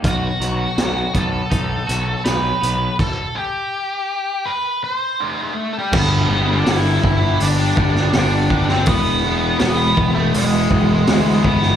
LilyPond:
<<
  \new Staff \with { instrumentName = "Lead electric guitar" } { \time 4/4 \key g \major \tempo 4 = 82 fis'4. a'4. b'4 | a'8 g'4. b'8 c''8 <a a'>8. <g g'>16 | <b b'>8. <d' d''>16 <e' e''>4 <d' d''>4 <d' d''>8. <c' c''>16 | <b b'>4 <b b'>8. <a a'>16 <gis gis'>4. <b b'>8 | }
  \new Staff \with { instrumentName = "Clean electric guitar" } { \time 4/4 \key g \major b,8 fis8 fis8 b8 dis'8 fis'8 dis'8 b8 | r1 | r1 | r1 | }
  \new Staff \with { instrumentName = "Distorted electric guitar" } { \time 4/4 \key g \major r1 | r1 | <g, d g b d' g'>8 <g b d' g'>8 <g, d g b d' g'>16 <g b d' g'>8 <g b d' g'>16 <g b d' g'>16 <g b d' g'>8. <g, d g b d' g'>16 <g b d' g'>16 <g b d' g'>16 <g b d' g'>16 | <e gis b e'>8 <e gis b e'>8 <e gis b e'>16 <gis b e'>8 <gis b e'>16 <e gis b e'>16 <gis b e'>8. <e gis b e'>16 <gis b e'>16 <e gis b e'>16 <gis b e'>16 | }
  \new Staff \with { instrumentName = "Overdriven electric guitar" } { \time 4/4 \key g \major r1 | r1 | <g, d g b d' g'>8 <g b d' g'>16 <g b d' g'>16 <g, d g b d' g'>4~ <g, d g b d' g'>16 <g b d' g'>16 <g b d' g'>8 <g, d g b d' g'>8 <g b d' g'>16 <g b d' g'>16 | <e gis b e'>8 <e gis b e'>16 <gis b e'>16 <e gis b e'>4~ <e gis b e'>16 <gis b e'>16 <e gis b e'>8 <e gis b e'>8 <e gis b e'>16 <gis b e'>16 | }
  \new Staff \with { instrumentName = "Picked electric bass" } { \clef bass \time 4/4 \key g \major b,,8 b,,8 b,,8 b,,8 b,,8 b,,8 b,,8 b,,8 | r1 | g,,8 g,,8 g,,8 g,,8 g,,8 g,,8 g,,4 | e,,4 e,,8 e,,8 e,,8 e,,8 d,8 g,,8 | }
  \new DrumStaff \with { instrumentName = "Drums" } \drummode { \time 4/4 <hh bd>8 hh8 <hh sn>8 <hh bd>8 <hh bd>8 hh8 <hh sn>8 hh8 | <cymc bd>4 r4 r4 r4 | <cymc bd>4 <hho sn>8 bd8 hho8 bd16 sn16 <hho sn>8 bd16 sn16 | <hho bd>4 <hho sn>8 bd8 hho8 bd8 <hho sn>8 bd16 sn16 | }
>>